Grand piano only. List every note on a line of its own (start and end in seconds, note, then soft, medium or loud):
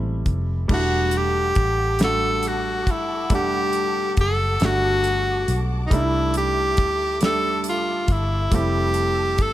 0.00 0.68 G3 medium
0.00 0.72 G#3 soft
0.00 0.70 A3 medium
0.00 0.71 C4 medium
0.00 0.71 E4 medium
0.68 1.69 G3 medium
0.68 1.69 A3 medium
0.68 1.70 D4 medium
0.72 0.77 E4 medium
0.79 1.74 F#5 medium
2.00 3.00 G3 medium
2.00 3.01 A3 medium
2.00 3.01 D4 medium
2.04 3.02 F#4 medium
3.30 4.30 G3 medium
3.30 4.31 A3 medium
3.30 4.31 D4 medium
3.34 4.32 F#5 medium
4.60 5.60 G3 medium
4.60 5.61 A3 medium
4.60 5.62 D4 medium
4.65 5.63 F#4 medium
5.90 6.91 G3 medium
5.90 6.91 A3 medium
5.90 6.92 D4 medium
5.95 5.99 D#4 medium
6.01 6.96 E4 medium
7.21 8.21 G3 medium
7.21 8.22 A3 medium
7.21 8.23 D4 medium
7.26 8.24 G4 medium
8.51 9.51 G3 medium
8.51 9.52 A3 medium
8.51 9.53 C4 medium
8.55 9.53 E4 loud